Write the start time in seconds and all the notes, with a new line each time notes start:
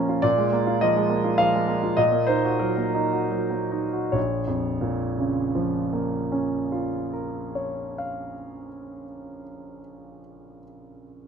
Already playing: A#2 F3 A#3 C#4 F4 A#4 A#5
0.09 F4
0.22 A#2 D5
0.38 G#3
0.52 A#3
0.67 F4
0.81 F3 D#5
0.96 G#3
1.10 A#3
1.24 F4
1.38 F3 F5
1.54 G#3
1.68 A#3
1.83 F4
1.97 A#2 D#5
2.12 A#3
2.27 D#4 C5
2.45 F#4
2.59 F#3 A#4
2.77 A#3
2.94 D#4
3.12 F#4
3.30 F#3
3.50 A#3
3.71 D#4
3.93 F#4
4.12 A#1 C#5
4.47 F2
4.81 A#2
5.18 C#3
5.55 F3
5.93 A#3
6.32 C#4
6.72 F4
7.13 A#4
7.55 C#5
7.98 F5